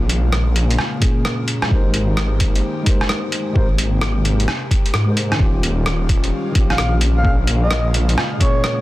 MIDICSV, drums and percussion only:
0, 0, Header, 1, 2, 480
1, 0, Start_track
1, 0, Tempo, 461538
1, 1778, Time_signature, 4, 2, 24, 8
1, 9164, End_track
2, 0, Start_track
2, 0, Title_t, "Drums"
2, 99, Note_on_c, 9, 42, 54
2, 203, Note_off_c, 9, 42, 0
2, 338, Note_on_c, 9, 37, 100
2, 442, Note_off_c, 9, 37, 0
2, 580, Note_on_c, 9, 42, 55
2, 684, Note_off_c, 9, 42, 0
2, 733, Note_on_c, 9, 42, 30
2, 816, Note_on_c, 9, 37, 63
2, 837, Note_off_c, 9, 42, 0
2, 920, Note_off_c, 9, 37, 0
2, 1056, Note_on_c, 9, 42, 53
2, 1061, Note_on_c, 9, 36, 104
2, 1160, Note_off_c, 9, 42, 0
2, 1165, Note_off_c, 9, 36, 0
2, 1299, Note_on_c, 9, 37, 103
2, 1403, Note_off_c, 9, 37, 0
2, 1536, Note_on_c, 9, 42, 55
2, 1640, Note_off_c, 9, 42, 0
2, 1688, Note_on_c, 9, 37, 64
2, 1780, Note_on_c, 9, 36, 116
2, 1792, Note_off_c, 9, 37, 0
2, 1884, Note_off_c, 9, 36, 0
2, 2015, Note_on_c, 9, 42, 55
2, 2119, Note_off_c, 9, 42, 0
2, 2257, Note_on_c, 9, 37, 105
2, 2361, Note_off_c, 9, 37, 0
2, 2496, Note_on_c, 9, 42, 54
2, 2500, Note_on_c, 9, 36, 104
2, 2600, Note_off_c, 9, 42, 0
2, 2604, Note_off_c, 9, 36, 0
2, 2656, Note_on_c, 9, 42, 30
2, 2760, Note_off_c, 9, 42, 0
2, 2977, Note_on_c, 9, 42, 55
2, 2980, Note_on_c, 9, 36, 105
2, 3081, Note_off_c, 9, 42, 0
2, 3084, Note_off_c, 9, 36, 0
2, 3131, Note_on_c, 9, 37, 58
2, 3215, Note_off_c, 9, 37, 0
2, 3215, Note_on_c, 9, 37, 103
2, 3319, Note_off_c, 9, 37, 0
2, 3455, Note_on_c, 9, 42, 53
2, 3559, Note_off_c, 9, 42, 0
2, 3698, Note_on_c, 9, 36, 117
2, 3802, Note_off_c, 9, 36, 0
2, 3936, Note_on_c, 9, 42, 51
2, 4040, Note_off_c, 9, 42, 0
2, 4175, Note_on_c, 9, 37, 99
2, 4279, Note_off_c, 9, 37, 0
2, 4420, Note_on_c, 9, 42, 51
2, 4524, Note_off_c, 9, 42, 0
2, 4574, Note_on_c, 9, 42, 29
2, 4658, Note_on_c, 9, 37, 61
2, 4678, Note_off_c, 9, 42, 0
2, 4762, Note_off_c, 9, 37, 0
2, 4897, Note_on_c, 9, 36, 101
2, 4901, Note_on_c, 9, 42, 52
2, 5001, Note_off_c, 9, 36, 0
2, 5005, Note_off_c, 9, 42, 0
2, 5051, Note_on_c, 9, 42, 28
2, 5134, Note_on_c, 9, 37, 104
2, 5155, Note_off_c, 9, 42, 0
2, 5238, Note_off_c, 9, 37, 0
2, 5375, Note_on_c, 9, 42, 52
2, 5479, Note_off_c, 9, 42, 0
2, 5531, Note_on_c, 9, 37, 60
2, 5615, Note_on_c, 9, 36, 111
2, 5635, Note_off_c, 9, 37, 0
2, 5719, Note_off_c, 9, 36, 0
2, 5859, Note_on_c, 9, 42, 52
2, 5963, Note_off_c, 9, 42, 0
2, 6094, Note_on_c, 9, 37, 98
2, 6198, Note_off_c, 9, 37, 0
2, 6334, Note_on_c, 9, 36, 98
2, 6335, Note_on_c, 9, 42, 49
2, 6438, Note_off_c, 9, 36, 0
2, 6439, Note_off_c, 9, 42, 0
2, 6486, Note_on_c, 9, 42, 27
2, 6590, Note_off_c, 9, 42, 0
2, 6813, Note_on_c, 9, 42, 53
2, 6815, Note_on_c, 9, 36, 102
2, 6917, Note_off_c, 9, 42, 0
2, 6919, Note_off_c, 9, 36, 0
2, 6970, Note_on_c, 9, 37, 56
2, 7054, Note_off_c, 9, 37, 0
2, 7054, Note_on_c, 9, 37, 99
2, 7158, Note_off_c, 9, 37, 0
2, 7291, Note_on_c, 9, 42, 50
2, 7395, Note_off_c, 9, 42, 0
2, 7537, Note_on_c, 9, 36, 108
2, 7641, Note_off_c, 9, 36, 0
2, 7773, Note_on_c, 9, 42, 51
2, 7877, Note_off_c, 9, 42, 0
2, 8014, Note_on_c, 9, 37, 94
2, 8118, Note_off_c, 9, 37, 0
2, 8259, Note_on_c, 9, 42, 51
2, 8363, Note_off_c, 9, 42, 0
2, 8413, Note_on_c, 9, 42, 29
2, 8503, Note_on_c, 9, 37, 62
2, 8517, Note_off_c, 9, 42, 0
2, 8607, Note_off_c, 9, 37, 0
2, 8740, Note_on_c, 9, 36, 94
2, 8742, Note_on_c, 9, 42, 52
2, 8844, Note_off_c, 9, 36, 0
2, 8846, Note_off_c, 9, 42, 0
2, 8983, Note_on_c, 9, 37, 99
2, 9087, Note_off_c, 9, 37, 0
2, 9164, End_track
0, 0, End_of_file